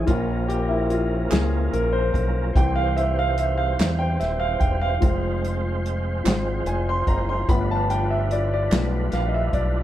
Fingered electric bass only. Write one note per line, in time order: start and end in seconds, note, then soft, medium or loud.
0.08 1.28 A#1 loud
1.32 1.70 C#2 medium
1.73 2.11 A#1 medium
2.14 2.52 B1 medium
2.56 3.75 C2 loud
3.79 4.17 E2 medium
4.21 4.58 D#1 medium
4.61 4.98 E1 medium
5.03 6.21 F1 medium
6.26 6.63 G#1 medium
6.66 7.04 F1 medium
7.07 7.45 F#1 medium
7.49 8.68 G1 loud
8.72 9.09 B1 medium
9.13 9.51 A#1 medium
9.53 9.83 B1 medium